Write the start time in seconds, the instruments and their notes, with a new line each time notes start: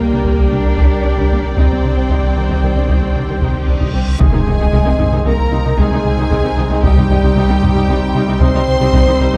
Already playing: sub bass C2, synth drone D3 G3 G4 A#4, french horn section G4 A#4, viola section A#4, violin section G5
0.00 analog synth bass C2, cello section A#3, synth pluck A#3, violin section D5
0.12 double bass section C2, analog synth bass C3, viola section D4, synth pluck D4
0.25 double bass section C2, analog synth bass C2, synth pluck G3, viola section G4, taiko
0.38 double bass section C2, analog synth bass C2, viola section A#3, synth pluck G4
0.51 double bass section C2, analog synth bass C3, cello section D4, synth pluck D4, viola section D4
0.64 double bass section C2, analog synth bass C2, viola section A#3, synth pluck A#3
0.77 double bass section C2, analog synth bass C2, synth pluck G3, viola section G4, taiko
0.92 analog synth bass C2
1.04 double bass section C2, analog synth bass C2, viola section D4, synth pluck G4
1.17 double bass section C2, analog synth bass C2, synth pluck G3, viola section G4, taiko
1.31 double bass section C2, analog synth bass C2, viola section A#3, synth pluck G4
1.44 analog synth bass C2
1.56 double bass section C2, analog synth bass C2, synth pluck C3, synth drone D#3 C5, cello section C4, viola section D#4 C5, french horn section D5, violin section G5, taiko, reverse cymbal
1.70 double bass section C2, analog synth bass C2, synth pluck C4, viola section C4
1.83 double bass section C2, analog synth bass C3, synth pluck G3, viola section D4
1.97 analog synth bass C2, double bass section C2, viola section C4, synth pluck C4
2.09 double bass section C2, analog synth bass C2, synth pluck C3, viola section D#4, taiko
2.23 analog synth bass C2, double bass section C2, viola section C4, synth pluck C4
2.36 analog synth bass C2, double bass section C2, synth pluck D#3, viola section D4
2.49 analog synth bass C2, double bass section C2, synth pluck C3, viola section D#4, taiko
2.63 analog synth bass C2, double bass section C2, synth pluck D#3, viola section C4
2.76 double bass section C2, analog synth bass C3, synth pluck G3, viola section D4
2.88 double bass section C2, analog synth bass C2, synth pluck C3, viola section D#4, taiko
3.02 analog synth bass C2, double bass section C2, synth pluck C4, viola section C4
3.16 double bass section C2, analog synth bass C3, synth pluck G3, viola section D4
3.29 double bass section C2, analog synth bass C2, synth pluck D#3, viola section C4
3.41 double bass section C2, analog synth bass C2, synth pluck C3, viola section D#4, taiko
3.55 analog synth bass C2
3.67 analog synth bass C2, double bass section C2, synth pluck C4, viola section D4
3.80 double bass section C2, analog synth bass C2, synth pluck C3, viola section D#4, taiko
3.92 double bass section C2, analog synth bass C2, viola section C4, synth pluck C4
4.08 analog synth bass C2
4.19 analog synth bass C2, sub bass C2, double bass section C2, cello section C3, viola section D#3 D#4, synth drone D#3 C4 D#4 C5, french horn section G#3, synth pluck G#3, violin section G#4 G#5, taiko, impact
4.32 cello section C3, analog synth bass C3, viola section D#3 D#4, synth pluck D#4, taiko low
4.46 analog synth bass C2, double bass section C2, cello section C3, viola section D#3 D#4, synth pluck C4
4.60 analog synth bass C2, cello section C3, viola section D#3 D#4, synth pluck G#4
4.72 analog synth bass C2, double bass section C2, cello section C3, viola section D#3 D#4, synth pluck G#3
4.85 analog synth bass C2, cello section C3, viola section D#3 D#4, synth pluck C4
4.98 double bass section C2, cello section C3, analog synth bass C3, viola section D#3 D#4, synth pluck D#4, taiko low
5.12 analog synth bass C3, cello section C3, viola section D#3 D#4, synth pluck D#4
5.24 analog synth bass C2, double bass section C2, cello section C3, viola section D#3 D#4, synth pluck G#3, french horn section A#3, violin section A#4 A#5
5.39 analog synth bass C2
5.52 double bass section C2, cello section C3, analog synth bass C3, viola section D#3 D#4, synth pluck D#4
5.65 cello section C3, analog synth bass C3, viola section D#3 D#4, synth pluck D#4
5.77 analog synth bass C2, double bass section C2, cello section C3, viola section D#3 D#4, french horn section G#3, synth pluck G#3, violin section G#4 G#5, taiko
5.91 analog synth bass C3, cello section C3, viola section D#3 D#4, synth pluck D#4
6.05 analog synth bass C3
6.17 cello section C3, analog synth bass C3, viola section D#3 D#4, synth pluck D#4
6.30 analog synth bass C2, double bass section C2, cello section C3, viola section D#3 D#4, synth pluck G#3, taiko
6.43 analog synth bass C2, cello section C3, viola section D#3 D#4, synth pluck C4
6.57 analog synth bass C2, double bass section C2, cello section C3, viola section D#3 D#4, synth pluck C4
6.70 analog synth bass C2, cello section C3, viola section D#3 D#4, synth pluck C4
6.83 analog synth bass C2, double bass section C2, cello section C3, synth pluck C3, french horn section G3, synth drone G3, viola section G3 D#4, violin section G4 G5, taiko
6.96 analog synth bass C3, cello section C3, viola section G3 D#4, synth pluck G3, taiko low
7.09 analog synth bass C2, double bass section C2, cello section C3, synth pluck D#3, viola section G3 D#4
7.23 analog synth bass C2, cello section C3, viola section G3 D#4, synth pluck C4
7.35 analog synth bass C2, double bass section C2, cello section C3, synth pluck C3, viola section G3 D#4
7.49 analog synth bass C2, cello section C3, synth pluck D#3, viola section G3 D#4
7.62 double bass section C2, analog synth bass C3, cello section C3, viola section G3 D#4, synth pluck G3, taiko low
7.75 cello section C3, analog synth bass C3, viola section G3 D#4, synth pluck G3
7.88 analog synth bass C2, double bass section C2, cello section C3, synth pluck C3, viola section G3 D#4
8.02 analog synth bass C2
8.15 double bass section C2, cello section C3, analog synth bass C3, synth pluck G3, viola section G3 D#4
8.27 cello section C3, analog synth bass C3, viola section G3 D#4, synth pluck G3
8.40 double bass section C2, analog synth bass C2, cello section C3, synth pluck C3, viola section G3 D#4, french horn section C4, violin section C5 C6, taiko
8.54 cello section C3, analog synth bass C3, synth pluck G3, viola section G3 D#4
8.68 analog synth bass C3
8.80 cello section C3, analog synth bass C3, viola section G3 D#4, synth pluck G3
8.93 double bass section C2, analog synth bass C2, cello section C3, synth pluck C3, viola section G3 D#4, taiko
9.06 analog synth bass C2, cello section C3, synth pluck D#3, viola section G3 D#4
9.19 double bass section C2, analog synth bass C2, cello section C3, synth pluck D#3, viola section G3 D#4
9.32 analog synth bass C2, cello section C3, synth pluck D#3, viola section G3 D#4